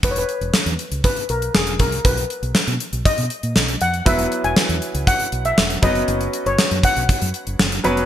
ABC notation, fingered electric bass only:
X:1
M:4/4
L:1/16
Q:1/4=119
K:Elyd
V:1 name="Fingered electric bass" clef=bass
E,,,2 z E,,, z E,, z C,, z2 B,,,2 E,,,2 =C,,2 | B,,,2 z B,,, z B,, z B,,, z B,, z A,, B,,,2 ^E,,2 | E,,,2 z E,,, z E,, z C,, z2 B,,,2 E,,,2 F,,,2 | F,,,2 z F,,, z F,, z B,,, z F,, z F,,, F,,,2 ^E,,,2 |]